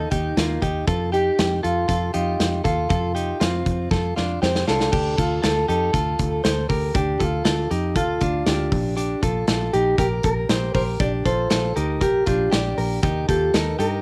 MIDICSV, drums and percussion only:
0, 0, Header, 1, 2, 480
1, 0, Start_track
1, 0, Tempo, 506757
1, 828, Time_signature, 4, 2, 24, 8
1, 13276, End_track
2, 0, Start_track
2, 0, Title_t, "Drums"
2, 108, Note_on_c, 9, 42, 69
2, 111, Note_on_c, 9, 36, 72
2, 202, Note_off_c, 9, 42, 0
2, 206, Note_off_c, 9, 36, 0
2, 354, Note_on_c, 9, 38, 94
2, 354, Note_on_c, 9, 42, 80
2, 449, Note_off_c, 9, 38, 0
2, 449, Note_off_c, 9, 42, 0
2, 590, Note_on_c, 9, 36, 72
2, 593, Note_on_c, 9, 42, 66
2, 685, Note_off_c, 9, 36, 0
2, 687, Note_off_c, 9, 42, 0
2, 830, Note_on_c, 9, 36, 104
2, 831, Note_on_c, 9, 42, 77
2, 925, Note_off_c, 9, 36, 0
2, 926, Note_off_c, 9, 42, 0
2, 1079, Note_on_c, 9, 42, 64
2, 1173, Note_off_c, 9, 42, 0
2, 1315, Note_on_c, 9, 42, 86
2, 1317, Note_on_c, 9, 38, 110
2, 1409, Note_off_c, 9, 42, 0
2, 1412, Note_off_c, 9, 38, 0
2, 1558, Note_on_c, 9, 42, 58
2, 1653, Note_off_c, 9, 42, 0
2, 1788, Note_on_c, 9, 36, 79
2, 1793, Note_on_c, 9, 42, 79
2, 1883, Note_off_c, 9, 36, 0
2, 1888, Note_off_c, 9, 42, 0
2, 2026, Note_on_c, 9, 42, 65
2, 2121, Note_off_c, 9, 42, 0
2, 2274, Note_on_c, 9, 38, 84
2, 2274, Note_on_c, 9, 42, 85
2, 2369, Note_off_c, 9, 38, 0
2, 2369, Note_off_c, 9, 42, 0
2, 2510, Note_on_c, 9, 36, 73
2, 2511, Note_on_c, 9, 42, 74
2, 2605, Note_off_c, 9, 36, 0
2, 2605, Note_off_c, 9, 42, 0
2, 2750, Note_on_c, 9, 36, 105
2, 2750, Note_on_c, 9, 42, 70
2, 2845, Note_off_c, 9, 36, 0
2, 2845, Note_off_c, 9, 42, 0
2, 2997, Note_on_c, 9, 42, 65
2, 3092, Note_off_c, 9, 42, 0
2, 3230, Note_on_c, 9, 42, 80
2, 3233, Note_on_c, 9, 38, 104
2, 3325, Note_off_c, 9, 42, 0
2, 3328, Note_off_c, 9, 38, 0
2, 3469, Note_on_c, 9, 36, 74
2, 3471, Note_on_c, 9, 42, 60
2, 3564, Note_off_c, 9, 36, 0
2, 3566, Note_off_c, 9, 42, 0
2, 3706, Note_on_c, 9, 36, 85
2, 3712, Note_on_c, 9, 38, 47
2, 3800, Note_off_c, 9, 36, 0
2, 3807, Note_off_c, 9, 38, 0
2, 3952, Note_on_c, 9, 38, 54
2, 4046, Note_off_c, 9, 38, 0
2, 4193, Note_on_c, 9, 38, 73
2, 4288, Note_off_c, 9, 38, 0
2, 4312, Note_on_c, 9, 38, 65
2, 4407, Note_off_c, 9, 38, 0
2, 4430, Note_on_c, 9, 38, 78
2, 4525, Note_off_c, 9, 38, 0
2, 4551, Note_on_c, 9, 38, 68
2, 4645, Note_off_c, 9, 38, 0
2, 4668, Note_on_c, 9, 49, 93
2, 4669, Note_on_c, 9, 36, 113
2, 4762, Note_off_c, 9, 49, 0
2, 4763, Note_off_c, 9, 36, 0
2, 4910, Note_on_c, 9, 36, 84
2, 4914, Note_on_c, 9, 42, 69
2, 5005, Note_off_c, 9, 36, 0
2, 5009, Note_off_c, 9, 42, 0
2, 5148, Note_on_c, 9, 42, 77
2, 5151, Note_on_c, 9, 38, 104
2, 5242, Note_off_c, 9, 42, 0
2, 5245, Note_off_c, 9, 38, 0
2, 5395, Note_on_c, 9, 42, 62
2, 5490, Note_off_c, 9, 42, 0
2, 5625, Note_on_c, 9, 36, 85
2, 5632, Note_on_c, 9, 42, 80
2, 5720, Note_off_c, 9, 36, 0
2, 5726, Note_off_c, 9, 42, 0
2, 5864, Note_on_c, 9, 42, 65
2, 5868, Note_on_c, 9, 36, 71
2, 5959, Note_off_c, 9, 42, 0
2, 5963, Note_off_c, 9, 36, 0
2, 6107, Note_on_c, 9, 38, 100
2, 6107, Note_on_c, 9, 42, 84
2, 6202, Note_off_c, 9, 38, 0
2, 6202, Note_off_c, 9, 42, 0
2, 6344, Note_on_c, 9, 36, 71
2, 6344, Note_on_c, 9, 46, 73
2, 6439, Note_off_c, 9, 36, 0
2, 6439, Note_off_c, 9, 46, 0
2, 6583, Note_on_c, 9, 36, 111
2, 6584, Note_on_c, 9, 42, 83
2, 6678, Note_off_c, 9, 36, 0
2, 6679, Note_off_c, 9, 42, 0
2, 6824, Note_on_c, 9, 36, 83
2, 6826, Note_on_c, 9, 42, 65
2, 6918, Note_off_c, 9, 36, 0
2, 6921, Note_off_c, 9, 42, 0
2, 7057, Note_on_c, 9, 42, 85
2, 7060, Note_on_c, 9, 38, 112
2, 7151, Note_off_c, 9, 42, 0
2, 7154, Note_off_c, 9, 38, 0
2, 7304, Note_on_c, 9, 42, 60
2, 7399, Note_off_c, 9, 42, 0
2, 7536, Note_on_c, 9, 36, 88
2, 7538, Note_on_c, 9, 42, 78
2, 7631, Note_off_c, 9, 36, 0
2, 7633, Note_off_c, 9, 42, 0
2, 7773, Note_on_c, 9, 42, 72
2, 7780, Note_on_c, 9, 36, 71
2, 7868, Note_off_c, 9, 42, 0
2, 7875, Note_off_c, 9, 36, 0
2, 8018, Note_on_c, 9, 38, 98
2, 8018, Note_on_c, 9, 42, 77
2, 8112, Note_off_c, 9, 38, 0
2, 8112, Note_off_c, 9, 42, 0
2, 8258, Note_on_c, 9, 46, 74
2, 8259, Note_on_c, 9, 36, 91
2, 8353, Note_off_c, 9, 46, 0
2, 8354, Note_off_c, 9, 36, 0
2, 8500, Note_on_c, 9, 42, 78
2, 8595, Note_off_c, 9, 42, 0
2, 8740, Note_on_c, 9, 36, 78
2, 8742, Note_on_c, 9, 42, 68
2, 8835, Note_off_c, 9, 36, 0
2, 8837, Note_off_c, 9, 42, 0
2, 8976, Note_on_c, 9, 42, 84
2, 8979, Note_on_c, 9, 38, 115
2, 9071, Note_off_c, 9, 42, 0
2, 9073, Note_off_c, 9, 38, 0
2, 9223, Note_on_c, 9, 42, 60
2, 9317, Note_off_c, 9, 42, 0
2, 9456, Note_on_c, 9, 36, 81
2, 9458, Note_on_c, 9, 42, 88
2, 9551, Note_off_c, 9, 36, 0
2, 9552, Note_off_c, 9, 42, 0
2, 9693, Note_on_c, 9, 42, 76
2, 9701, Note_on_c, 9, 36, 78
2, 9788, Note_off_c, 9, 42, 0
2, 9796, Note_off_c, 9, 36, 0
2, 9940, Note_on_c, 9, 38, 100
2, 9940, Note_on_c, 9, 42, 90
2, 10035, Note_off_c, 9, 38, 0
2, 10035, Note_off_c, 9, 42, 0
2, 10179, Note_on_c, 9, 46, 72
2, 10180, Note_on_c, 9, 36, 74
2, 10273, Note_off_c, 9, 46, 0
2, 10275, Note_off_c, 9, 36, 0
2, 10419, Note_on_c, 9, 42, 83
2, 10420, Note_on_c, 9, 36, 114
2, 10514, Note_off_c, 9, 42, 0
2, 10515, Note_off_c, 9, 36, 0
2, 10662, Note_on_c, 9, 36, 78
2, 10665, Note_on_c, 9, 42, 73
2, 10756, Note_off_c, 9, 36, 0
2, 10759, Note_off_c, 9, 42, 0
2, 10897, Note_on_c, 9, 42, 86
2, 10900, Note_on_c, 9, 38, 101
2, 10992, Note_off_c, 9, 42, 0
2, 10994, Note_off_c, 9, 38, 0
2, 11145, Note_on_c, 9, 42, 61
2, 11240, Note_off_c, 9, 42, 0
2, 11379, Note_on_c, 9, 36, 80
2, 11384, Note_on_c, 9, 42, 83
2, 11474, Note_off_c, 9, 36, 0
2, 11479, Note_off_c, 9, 42, 0
2, 11617, Note_on_c, 9, 42, 75
2, 11623, Note_on_c, 9, 36, 79
2, 11712, Note_off_c, 9, 42, 0
2, 11718, Note_off_c, 9, 36, 0
2, 11864, Note_on_c, 9, 38, 106
2, 11864, Note_on_c, 9, 42, 81
2, 11958, Note_off_c, 9, 42, 0
2, 11959, Note_off_c, 9, 38, 0
2, 12103, Note_on_c, 9, 46, 78
2, 12197, Note_off_c, 9, 46, 0
2, 12342, Note_on_c, 9, 36, 115
2, 12343, Note_on_c, 9, 42, 83
2, 12437, Note_off_c, 9, 36, 0
2, 12437, Note_off_c, 9, 42, 0
2, 12584, Note_on_c, 9, 36, 87
2, 12588, Note_on_c, 9, 42, 68
2, 12679, Note_off_c, 9, 36, 0
2, 12682, Note_off_c, 9, 42, 0
2, 12824, Note_on_c, 9, 42, 84
2, 12827, Note_on_c, 9, 38, 120
2, 12918, Note_off_c, 9, 42, 0
2, 12921, Note_off_c, 9, 38, 0
2, 13069, Note_on_c, 9, 42, 60
2, 13164, Note_off_c, 9, 42, 0
2, 13276, End_track
0, 0, End_of_file